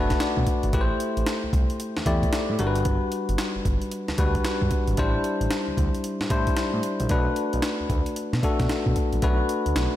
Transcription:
Already playing: F#1 A3 D4 F#4 B4 F#5 A5
0.10 kick, snare, closed hi-hat
0.20 D5, snare, closed hi-hat
0.37 B2, kick
0.47 kick, closed hi-hat
0.63 G#1, closed hi-hat
0.73 A1 A3 E4 G4 B4, kick, closed hi-hat
0.81 C5
1.00 closed hi-hat
1.17 A1, closed hi-hat
1.27 snare, closed hi-hat
1.44 C2
1.53 C2, kick, closed hi-hat
1.70 closed hi-hat
1.80 closed hi-hat
1.97 E2, snare
2.06 E2 A3 E4 G4 D5, kick, closed hi-hat
2.23 kick, closed hi-hat
2.33 snare, closed hi-hat
2.50 A2
2.59 G1 G3 D4 F#4 A#4, closed hi-hat
2.67 B4
2.75 closed hi-hat
2.85 kick, closed hi-hat
3.12 closed hi-hat
3.29 G1, closed hi-hat
3.38 snare, closed hi-hat
3.56 G1
3.65 G1, kick, closed hi-hat
3.82 closed hi-hat
3.91 closed hi-hat
4.08 D2, snare
4.18 D2 G3 D4 F#4 B4, kick, closed hi-hat
4.35 kick, closed hi-hat
4.44 snare, closed hi-hat
4.62 G2, kick
4.71 kick, closed hi-hat
4.88 G#1, closed hi-hat
4.97 A1 G3 D4 E4 C5, kick, closed hi-hat
5.24 closed hi-hat
5.41 A1, closed hi-hat
5.51 snare, closed hi-hat
5.68 D2
5.77 D2, kick, closed hi-hat
5.95 closed hi-hat
6.04 closed hi-hat
6.20 A2, snare
6.30 A2 G3 D4 E4 C5, kick, closed hi-hat
6.47 kick, closed hi-hat
6.57 snare, closed hi-hat
6.73 A2
6.83 closed hi-hat
7.00 A#1, closed hi-hat
7.09 B1 A3 D4 F#4 B4, kick, closed hi-hat
7.36 closed hi-hat
7.53 B1, closed hi-hat
7.62 snare, closed hi-hat
7.80 D2
7.90 D2, kick, closed hi-hat
8.06 closed hi-hat
8.16 closed hi-hat
8.33 B2, snare
8.43 A3 D4 F#4 A4, kick, closed hi-hat
8.60 B2, kick, snare, closed hi-hat
8.69 snare, closed hi-hat
8.86 B2, kick
8.96 kick, closed hi-hat
9.13 A#1, closed hi-hat
9.22 B1 A3 D4 F#4 B4, kick, closed hi-hat
9.49 closed hi-hat
9.66 D2, closed hi-hat
9.76 B1, snare, closed hi-hat

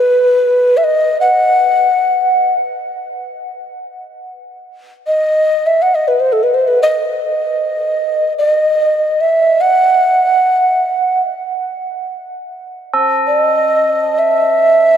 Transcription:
Already playing: B4
0.77 E5
0.84 D#5
1.21 F#5
5.07 D#5
5.67 E5
5.82 F#5
5.95 D#5
6.08 B4
6.20 C5
6.33 A4
6.43 B4
6.54 C5
6.68 B4
6.82 D#5
8.38 D#5
9.21 E5
9.61 F#5
12.94 A4
13.27 D#5
14.19 E5

